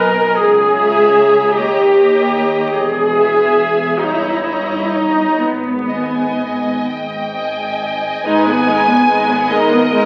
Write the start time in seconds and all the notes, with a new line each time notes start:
Already playing: B1 B2 A#4 D#5 G#5
0.36 C#2 G#4
0.76 C#5 E5 A#5
1.55 D#2 G4 C#5 D#5 A#5
1.96 C#5 D#5 A#5
2.77 E1 E2 G#4
3.19 E5 G#5
4.04 G1 G2 D#4 C#5 D#5 A#5
4.13 E4
4.22 D#4
4.30 E4
4.37 D#4
4.46 E4 C#5 D#5 A#5
4.55 D#4
4.63 E4
4.71 D#4
4.80 E4
4.89 D#4
5.38 G#1 G#2 B3
5.89 D#5 G#5
6.88 G#1 G#2 G5
7.35 D#5 G#5
8.25 G#1 G#3 D#4 B4 D#5 G#5
8.47 B3 G#4 B4
8.68 G#3 D#4 B4 D#5
8.87 B3 G#4 B4
9.08 G#3 D#4 B4 D#5
9.28 B3 G#4 B4
9.50 G#1 G#3 D#4 A#4 B4 D#5
9.70 B3 G#4 B4
9.91 G#3 D#4 B4 D#5